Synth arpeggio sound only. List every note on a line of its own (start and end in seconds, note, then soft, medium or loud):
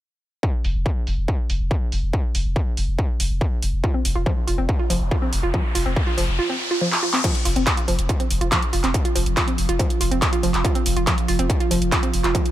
3.84 3.93 F4 medium
3.94 4.00 C4 medium
4.15 4.21 F4 medium
4.26 4.32 F3 loud
4.47 4.56 F4 medium
4.58 4.64 C4 medium
4.79 4.85 F4 medium
4.90 4.96 F3 loud
5.11 5.20 F4 medium
5.22 5.28 C4 medium
5.43 5.49 F4 medium
5.54 5.60 F3 loud
5.75 5.84 F4 medium
5.86 5.92 C4 medium
6.07 6.13 F4 medium
6.18 6.24 F3 loud
6.39 6.48 F4 medium
6.50 6.56 C4 medium
6.71 6.77 F4 medium
6.81 6.87 F3 medium
7.03 7.12 F4 medium
7.13 7.19 C4 medium
7.24 7.30 F3 loud
7.45 7.54 F4 medium
7.56 7.62 C4 medium
7.77 7.83 F4 medium
7.88 7.94 F3 loud
8.09 8.18 F4 medium
8.20 8.26 C4 medium
8.41 8.47 F4 medium
8.52 8.58 F3 loud
8.73 8.82 F4 medium
8.84 8.90 C4 medium
9.05 9.11 F4 medium
9.15 9.22 F3 loud
9.37 9.46 F4 medium
9.48 9.53 C4 medium
9.69 9.75 F4 medium
9.79 9.85 F3 loud
10.01 10.10 F4 medium
10.11 10.17 C4 medium
10.33 10.39 F4 medium
10.43 10.49 F3 loud
10.65 10.74 F4 medium
10.75 10.81 C4 medium
10.97 11.02 F4 medium
11.07 11.13 F3 loud
11.28 11.37 F4 medium
11.39 11.45 C4 medium
11.60 11.66 F4 medium
11.71 11.77 F3 loud
11.92 12.01 F4 medium
12.03 12.09 C4 medium
12.24 12.30 F4 medium
12.35 12.41 F3 loud